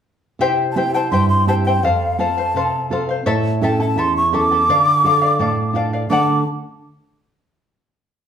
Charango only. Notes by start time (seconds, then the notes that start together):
0.41 E4 G4 C5 E5 G5
0.77 E4 C5 E5 G5
0.95 E4 C5 G5
1.12 E4 C5 E5 G5
1.48 E4 C5 E5 G5
1.67 E4 C5 G5
1.84 A4 C5 F5
2.19 A4 C5 F5
2.38 C5 F5
2.56 A4 C5 F5
2.91 A4 C5 F5
3.09 C5 F5
3.26 E4 A4 C#5 E5 A5
3.63 E4 A4 E5 A5
3.80 E4 A4 A5
3.98 E4 A4 E5 A5
4.33 E4 A4 E5 A5
4.51 E4 A4 A5
4.69 A4 D5 F5
5.05 A4 D5 F5
5.22 D5 F5
5.39 A4 D5 F5
5.75 A4 D5 F5
5.93 D5 F5
6.10 A4 D5 F#5